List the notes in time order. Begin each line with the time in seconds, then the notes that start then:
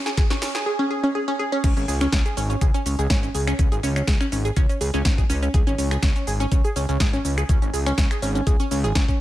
0.06 G#4, snare, closed hi-hat, shaker
0.17 G#4, kick, snare, closed hi-hat, shaker
0.30 C#4, snare, closed hi-hat, shaker
0.42 C#4, snare, open hi-hat, shaker
0.55 G#4, snare, closed hi-hat, shaker
0.66 G#4
0.79 C#4
0.91 G#4
1.03 C#4
1.15 G#4
1.28 C#4
1.39 G#4
1.52 C#4
1.64 C#2 C#4, kick, closed hi-hat, crash, shaker
1.77 G#1 C#4, closed hi-hat, shaker
1.88 C#2 G#4, open hi-hat, shaker
2.01 C#4, finger snap, closed hi-hat, shaker
2.12 C#2 C#4, kick, snare, closed hi-hat, shaker
2.26 G#4, closed hi-hat, shaker
2.37 G#1 C#4, open hi-hat, shaker
2.50 C#4, closed hi-hat, shaker
2.61 C#2 G#4, kick, closed hi-hat, shaker
2.74 C#4, closed hi-hat, shaker
2.86 C#2 C#4, open hi-hat, shaker
2.99 C#2 G#4, closed hi-hat, shaker
3.10 G#1 C#4, kick, snare, closed hi-hat, shaker
3.23 C#4, closed hi-hat, shaker
3.35 C#2 G#4, open hi-hat, shaker
3.47 C#4, finger snap, closed hi-hat, shaker
3.59 C#2 C#4, kick, closed hi-hat, shaker
3.72 G#1 G#4, closed hi-hat, shaker
3.83 C#2 C#4, open hi-hat, shaker
3.96 C#4, finger snap, closed hi-hat, shaker
4.07 C#2 G#4, kick, snare, closed hi-hat, shaker
4.21 C#4, finger snap, closed hi-hat, shaker
4.32 G#1 C#4, open hi-hat, shaker
4.45 G#4, closed hi-hat, shaker
4.56 C#2 C#4, kick, closed hi-hat, shaker
4.69 C#4, closed hi-hat, shaker
4.81 C#2 G#4, open hi-hat, shaker
4.94 C#2 C#4, closed hi-hat, shaker
5.05 G#1 C#4, kick, snare, closed hi-hat, shaker
5.18 G#4, kick, closed hi-hat, shaker
5.30 C#2 C#4, open hi-hat, shaker
5.43 C#4, closed hi-hat, shaker
5.54 C#2 G#4, kick, closed hi-hat, shaker
5.67 G#1 C#4, closed hi-hat, shaker
5.78 C#2 C#4, open hi-hat, shaker
5.91 G#4, finger snap, closed hi-hat, shaker
6.03 C#2 C#4, kick, snare, closed hi-hat, shaker
6.16 C#4, closed hi-hat, shaker
6.27 G#1 G#4, open hi-hat, shaker
6.40 C#4, closed hi-hat, shaker
6.52 C#2 C#4, kick, closed hi-hat, shaker
6.65 G#4, closed hi-hat, shaker
6.76 C#2 C#4, open hi-hat, shaker
6.89 C#2 C#4, closed hi-hat, shaker
7.00 G#1 G#4, kick, snare, closed hi-hat, shaker
7.13 C#4, closed hi-hat, shaker
7.25 C#2 C#4, open hi-hat, shaker
7.38 G#4, finger snap, closed hi-hat, shaker
7.49 C#2 C#4, kick, closed hi-hat, shaker
7.62 G#1 C#4, closed hi-hat, shaker
7.74 C#2 G#4, open hi-hat, shaker
7.86 C#4, finger snap, closed hi-hat, shaker
7.98 C#2 C#4, kick, snare, closed hi-hat, shaker
8.11 G#4, finger snap, closed hi-hat, shaker
8.22 G#1 C#4, open hi-hat, shaker
8.35 C#4, closed hi-hat, shaker
8.47 C#2 G#4, kick, closed hi-hat, shaker
8.60 C#4, closed hi-hat, shaker
8.71 C#2 C#4, open hi-hat, shaker
8.84 G#1 G#4, closed hi-hat, shaker
8.95 C#2 C#4, kick, snare, closed hi-hat, shaker
9.08 C#4, kick, closed hi-hat, shaker